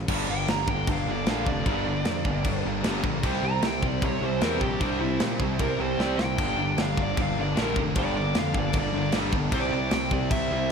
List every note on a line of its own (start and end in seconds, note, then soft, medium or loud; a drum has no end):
0.08 0.26 G1 loud
0.08 0.28 G2 loud
0.08 0.28 D3 loud
0.08 0.29 G3 medium
0.08 0.30 A#3 loud
0.08 0.30 D4 loud
0.08 kick loud
0.08 crash loud
0.08 crash medium
0.28 0.46 G1 medium
0.28 0.47 G2 medium
0.28 0.46 D3 medium
0.28 0.48 G3 medium
0.28 0.48 A#3 medium
0.28 0.49 D4 medium
0.28 0.49 G5 loud
0.47 0.85 G1 medium
0.47 0.67 G2 loud
0.47 0.67 D3 loud
0.47 0.68 G3 loud
0.47 0.69 A#3 medium
0.47 0.69 D4 medium
0.47 0.69 A#5 medium
0.47 snare loud
0.47 crash medium
0.68 0.86 G2 medium
0.68 0.87 D3 medium
0.68 0.88 G3 medium
0.68 0.88 A#3 loud
0.68 0.88 D4 medium
0.68 0.88 G5 medium
0.68 kick loud
0.87 1.06 G1 medium
0.87 1.06 G2 medium
0.87 1.07 D3 loud
0.87 1.08 G3 medium
0.87 1.08 A#3 loud
0.87 1.08 D4 medium
0.87 kick loud
0.87 crash medium
0.92 1.11 F5 medium
1.07 1.25 G1 loud
1.07 1.25 G2 medium
1.07 1.26 D3 medium
1.07 1.27 G3 medium
1.07 1.27 A#3 medium
1.07 1.28 D4 medium
1.07 1.28 D5 loud
1.26 1.45 A#1 loud
1.26 1.46 G2 loud
1.26 1.46 D3 loud
1.26 1.48 G3 loud
1.26 1.47 A#3 loud
1.26 1.48 D4 loud
1.26 1.47 F5 loud
1.26 snare loud
1.26 crash medium
1.46 1.65 F1 medium
1.46 1.65 G2 medium
1.46 1.65 D3 medium
1.46 1.66 G3 medium
1.46 1.66 A#3 medium
1.46 1.67 D4 medium
1.46 2.63 D5 loud
1.46 kick medium
1.66 2.03 G1 loud
1.66 1.85 G2 medium
1.66 1.86 D3 medium
1.66 1.87 G3 medium
1.66 1.87 A#3 loud
1.66 1.87 D4 loud
1.66 kick loud
1.66 crash medium
1.86 2.04 G2 medium
1.86 2.05 D3 medium
1.86 2.06 G3 loud
1.86 2.06 A#3 medium
1.86 2.06 D4 loud
2.05 2.23 F2 medium
2.05 2.23 G2 loud
2.05 2.24 D3 loud
2.05 2.26 G3 loud
2.05 2.25 A#3 loud
2.05 2.25 D4 loud
2.05 snare loud
2.05 crash medium
2.25 2.43 G1 medium
2.25 2.43 G2 loud
2.25 2.44 D3 medium
2.25 2.45 G3 medium
2.25 2.44 A#3 medium
2.25 2.45 D4 loud
2.25 kick medium
2.44 2.63 G1 loud
2.44 2.64 G2 medium
2.44 2.64 D3 medium
2.44 2.65 G3 loud
2.44 2.65 A#3 medium
2.44 2.65 D4 loud
2.44 kick loud
2.44 crash medium
2.65 2.83 G1 loud
2.65 2.83 G2 medium
2.65 2.83 D3 medium
2.65 2.84 G3 medium
2.65 2.84 A#3 loud
2.65 2.84 D4 loud
2.84 3.03 G1 loud
2.84 3.02 G2 loud
2.84 3.02 D3 loud
2.84 3.04 G3 loud
2.84 3.03 A#3 loud
2.84 3.04 D4 loud
2.84 snare loud
2.84 crash medium
3.03 3.22 A#1 loud
3.03 3.22 G2 medium
3.03 3.22 D3 medium
3.03 3.23 G3 medium
3.03 3.23 A#3 medium
3.03 3.23 D4 medium
3.03 kick medium
3.22 3.42 C2 loud
3.22 3.42 C3 loud
3.22 3.43 G3 loud
3.22 3.43 C4 loud
3.22 3.44 E4 loud
3.22 kick loud
3.22 crash medium
3.42 3.61 C2 medium
3.42 3.62 C3 medium
3.42 3.62 G3 medium
3.42 3.62 C4 loud
3.42 3.63 E4 loud
3.42 3.63 A#5 loud
3.62 3.98 C2 medium
3.62 3.81 C3 loud
3.62 3.82 G3 loud
3.62 3.83 C4 loud
3.62 3.83 E4 loud
3.62 snare loud
3.62 crash medium
3.66 3.84 G5 medium
3.82 4.01 C3 medium
3.82 4.02 G3 medium
3.82 4.01 C4 loud
3.82 4.02 E4 medium
3.82 kick medium
3.88 4.04 D5 loud
4.02 4.20 C2 medium
4.02 4.20 C3 medium
4.02 4.22 G3 loud
4.02 4.21 C4 medium
4.02 4.22 E4 loud
4.02 4.23 C#5 loud
4.02 kick loud
4.02 crash medium
4.21 4.40 C2 medium
4.21 4.40 C3 medium
4.21 4.42 G3 medium
4.21 4.42 C4 medium
4.21 4.42 E4 medium
4.21 4.42 C5 loud
4.41 4.60 E2 loud
4.41 4.60 C3 loud
4.41 4.61 G3 loud
4.41 4.61 C4 loud
4.41 4.62 E4 loud
4.41 4.61 A#4 loud
4.41 snare loud
4.41 crash medium
4.60 4.79 A#1 medium
4.60 4.79 C3 medium
4.60 4.80 G3 medium
4.60 4.79 C4 loud
4.60 4.80 E4 medium
4.60 4.80 G4 medium
4.60 kick medium
4.80 5.17 C2 medium
4.80 4.99 C3 loud
4.80 5.00 G3 medium
4.80 5.00 C4 loud
4.80 5.00 D4 loud
4.80 5.01 E4 loud
4.80 kick loud
4.80 crash medium
5.01 5.19 C3 medium
5.01 5.20 G3 medium
5.01 5.20 C4 medium
5.01 5.20 E4 loud
5.20 5.39 A#2 medium
5.20 5.38 C3 medium
5.20 5.39 G3 loud
5.20 5.39 C4 loud
5.20 5.40 E4 loud
5.20 snare loud
5.20 crash medium
5.39 5.58 C2 medium
5.39 5.58 C3 medium
5.39 5.59 G3 medium
5.39 5.59 C4 medium
5.39 5.60 E4 medium
5.39 kick medium
5.59 5.78 C2 medium
5.59 5.78 C3 medium
5.59 5.80 G3 medium
5.59 5.79 C4 medium
5.59 5.79 E4 medium
5.59 5.79 A#4 loud
5.59 kick loud
5.59 crash medium
5.79 5.97 C2 medium
5.79 5.98 C3 medium
5.79 5.99 G3 loud
5.79 5.99 C4 medium
5.79 5.99 E4 medium
5.79 6.00 C5 loud
5.98 6.17 C2 loud
5.98 6.17 C3 loud
5.98 6.19 G3 loud
5.98 6.19 C4 loud
5.98 6.18 E4 loud
5.98 6.23 D5 loud
5.98 snare medium
6.18 6.36 C2 medium
6.18 6.37 C3 medium
6.18 6.39 G3 medium
6.18 6.38 C4 medium
6.18 6.38 E4 medium
6.18 snare loud
6.23 6.78 G5 loud
6.38 6.56 G1 loud
6.38 6.58 G2 loud
6.38 6.58 D3 loud
6.38 6.59 G3 medium
6.38 6.59 A#3 loud
6.38 6.60 D4 loud
6.38 kick loud
6.38 splash medium
6.38 crash medium
6.57 6.76 G1 medium
6.57 6.78 G2 medium
6.57 6.77 D3 medium
6.57 6.79 G3 loud
6.57 6.79 A#3 loud
6.57 6.79 D4 loud
6.77 7.13 G1 loud
6.77 6.97 G2 loud
6.77 6.97 D3 loud
6.77 6.98 G3 loud
6.77 6.99 A#3 loud
6.77 6.99 D4 loud
6.77 snare loud
6.77 crash medium
6.82 7.02 F5 medium
6.97 7.16 G2 medium
6.97 7.17 D3 loud
6.97 7.18 G3 medium
6.97 7.18 A#3 loud
6.97 7.18 D4 loud
6.97 kick medium
7.02 7.19 D5 loud
7.17 7.35 G1 medium
7.17 7.35 G2 medium
7.17 7.35 D3 medium
7.17 7.36 G3 medium
7.17 7.36 A#3 loud
7.17 7.36 D4 loud
7.17 kick loud
7.17 crash medium
7.22 7.39 F5 loud
7.36 7.55 G1 loud
7.36 7.55 G2 medium
7.36 7.55 D3 loud
7.36 7.57 G3 medium
7.36 7.57 A#3 medium
7.36 7.57 D4 loud
7.41 7.58 D5 loud
7.57 7.75 A#1 loud
7.57 7.75 G2 loud
7.57 7.76 D3 loud
7.57 7.77 G3 loud
7.57 7.77 A#3 loud
7.57 7.77 D4 loud
7.57 snare loud
7.57 crash medium
7.62 7.79 A#4 loud
7.76 7.94 F1 medium
7.76 7.94 G2 medium
7.76 7.95 D3 medium
7.76 7.96 G3 medium
7.76 7.97 A#3 loud
7.76 7.97 D4 medium
7.76 kick medium
7.95 8.32 G1 loud
7.95 8.14 G2 medium
7.95 8.15 D3 medium
7.95 8.17 G3 loud
7.95 8.16 A#3 loud
7.95 8.16 D4 loud
7.95 8.35 D5 loud
7.95 kick loud
7.95 crash medium
8.15 8.33 G2 medium
8.15 8.34 D3 loud
8.15 8.35 G3 medium
8.15 8.34 A#3 loud
8.15 8.35 D4 loud
8.34 8.53 F2 loud
8.34 8.52 G2 loud
8.34 8.53 D3 loud
8.34 8.54 G3 medium
8.34 8.53 A#3 loud
8.34 8.54 D4 loud
8.34 snare loud
8.34 crash medium
8.39 8.59 F5 medium
8.53 8.73 G1 loud
8.53 8.72 G2 medium
8.53 8.72 D3 medium
8.53 8.73 G3 medium
8.53 8.73 A#3 medium
8.53 8.74 D4 medium
8.53 kick loud
8.59 8.76 D5 loud
8.73 8.92 G1 medium
8.73 8.92 G2 medium
8.73 8.93 D3 loud
8.73 8.93 G3 loud
8.73 8.93 A#3 loud
8.73 8.94 D4 loud
8.73 kick loud
8.73 crash medium
8.79 9.15 D5 loud
8.93 9.11 G1 loud
8.93 9.12 G2 medium
8.93 9.12 D3 medium
8.93 9.13 G3 medium
8.93 9.13 A#3 loud
8.93 9.13 D4 loud
9.12 9.31 G1 loud
9.12 9.30 G2 loud
9.12 9.31 D3 medium
9.12 9.32 G3 loud
9.12 9.32 A#3 loud
9.12 9.33 D4 loud
9.12 snare loud
9.12 crash medium
9.32 9.51 G1 medium
9.32 9.51 G2 medium
9.32 9.51 D3 medium
9.32 9.51 G3 loud
9.32 9.52 A#3 loud
9.32 9.52 D4 medium
9.32 kick medium
9.52 9.71 C2 loud
9.52 9.70 C3 loud
9.52 9.70 G3 loud
9.52 9.72 C4 loud
9.52 9.71 E4 loud
9.52 9.92 D5 loud
9.52 kick loud
9.52 crash medium
9.71 9.91 C2 medium
9.71 9.89 C3 medium
9.71 9.90 G3 medium
9.71 9.91 C4 medium
9.71 9.91 E4 medium
9.91 10.28 C2 medium
9.91 10.10 C3 loud
9.91 10.11 G3 loud
9.91 10.12 C4 loud
9.91 10.12 E4 loud
9.91 10.12 G5 loud
9.91 snare loud
9.91 crash medium
10.11 10.28 C3 medium
10.11 10.29 G3 loud
10.11 10.29 C4 medium
10.11 10.30 E4 loud
10.11 10.31 D5 loud
10.11 kick medium
10.30 10.50 C2 medium
10.30 10.48 C3 medium
10.30 10.49 G3 medium
10.30 10.50 C4 medium
10.30 10.50 E4 loud
10.30 10.69 E5 loud
10.30 kick loud
10.30 crash medium
10.50 10.69 C2 loud
10.50 10.68 C3 medium
10.50 10.69 G3 medium
10.50 10.69 C4 medium
10.50 10.70 E4 medium